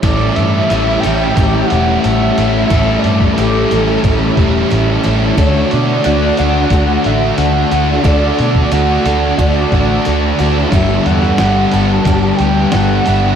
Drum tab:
HH |o-o-o-o-o-o-o-o-|o-o-o-o-o-o-o-o-|o-o-o-o-o-o-o-o-|o-o-o-o-o-o-o-o-|
SD |----------------|----------------|----------------|----------------|
BD |o-------o-------|o--o----o-o-----|o-------o-------|o--o----o-o-----|

HH |o-o-o-o-o-o-o-o-|
SD |---oo-------o---|
BD |o-------o-------|